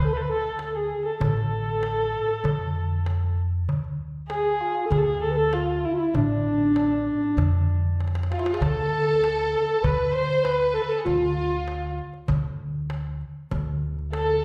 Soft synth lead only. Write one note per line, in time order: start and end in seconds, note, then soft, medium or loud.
0.05 0.14 A4 medium
0.13 0.31 B4 loud
0.29 0.78 A4 loud
0.76 1.07 G#4 medium
1.06 1.21 A4 medium
1.23 3.34 A4 loud
4.30 4.62 G#4 loud
4.60 4.87 F4 medium
4.85 4.93 A4 medium
4.92 5.25 G#4 loud
5.24 5.32 A4 medium
5.30 5.38 B4 medium
5.37 5.56 A4 medium
5.54 5.87 F4 loud
5.85 5.94 E4 medium
5.93 6.01 F4 medium
6.00 6.16 E4 medium
6.16 7.96 D4 medium
8.33 8.55 F4 medium
8.53 8.63 G#4 medium
8.61 9.84 A4 loud
9.83 10.16 B4 loud
10.14 10.45 C5 loud
10.43 10.75 B4 loud
10.74 10.83 A4 medium
10.81 10.90 B4 medium
10.88 11.04 A4 medium
11.05 11.94 F4 medium
14.12 14.44 A4 medium